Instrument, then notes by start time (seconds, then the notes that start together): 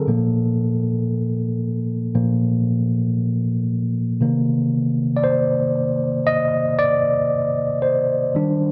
tine electric piano
Already playing: A4
0.07 A#2 F3 A#3
2.15 A#2 F3 A#3
4.21 C3 D#3 A#3
5.17 D5
5.24 C5
6.27 D#5
6.79 D5
7.82 C5
8.35 D#3 G3 D4